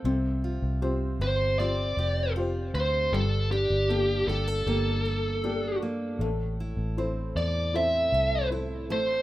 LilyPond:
<<
  \new Staff \with { instrumentName = "Lead electric guitar" } { \time 4/4 \key a \phrygian \tempo 4 = 78 r4. c''8 d''4 r8 c''8 | a'8 g'4 a'2 r8 | r4. d''8 e''4 r8 c''8 | }
  \new Staff \with { instrumentName = "Felt piano" } { \time 4/4 \key a \phrygian c'4 <f' g' c''>4 <f' g' c''>4 <f' g' c''>4 | g4 <bes g' a'>4 <bes g' a'>4 <bes g' a'>4 | a4 <e' a' c''>4 <e' a' c''>4 <e' a' c''>8 a8 | }
  \new Staff \with { instrumentName = "Steel-string acoustic guitar" } { \time 4/4 \key a \phrygian c8 f'8 c'8 g'8 c'8 g'8 f'8 c'8 | g,8 d'8 bes8 g'16 a'16 bes8 a'8 d'8 bes8 | a,8 e'8 c'8 a'8 c'8 a'8 e'8 a8 | }
  \new Staff \with { instrumentName = "Fingered electric bass" } { \clef bass \time 4/4 \key a \phrygian c,8. c,8. g,,4 f,,4 d,8 | g,,8. g,,8. g,,8 g,,4. r8 | a,,8. a,,8. e,4 c,4 a,,8 | }
>>